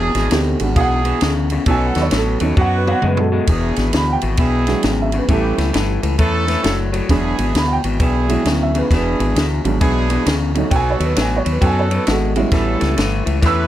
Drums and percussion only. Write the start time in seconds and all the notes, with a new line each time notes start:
0.15 snare, ride
0.31 snare, ride
0.60 ride
0.76 kick, ride
1.05 ride
1.21 snare, ride
1.50 ride
1.66 kick, ride
1.95 snare, ride
2.11 snare, ride
2.40 ride
2.57 kick
2.87 mid tom
3.02 mid tom
3.17 floor tom
3.47 kick, ride
3.76 snare, ride
3.93 snare, ride
4.21 ride
4.37 kick, ride
4.67 snare, ride
4.83 snare, ride
5.12 ride
5.29 kick, ride
5.58 snare, ride
5.74 snare, ride
6.03 ride
6.19 kick, ride
6.48 snare, ride
6.64 snare, ride
6.94 ride
7.09 kick, snare, ride
7.39 ride
7.55 snare, ride
7.84 ride
8.00 kick, ride
8.29 ride
8.45 snare, ride
8.75 ride
8.91 kick, snare, ride
9.20 ride
9.36 snare, ride
9.65 ride
9.81 kick, ride
10.10 ride
10.26 snare, ride
10.55 ride
10.71 kick, ride
11.00 ride
11.16 snare, ride
11.46 ride
11.62 kick, ride
11.91 ride
12.07 snare, ride
12.36 ride
12.52 kick, snare, ride
12.81 snare, ride
12.98 snare, ride
13.27 ride
13.43 kick, snare, ride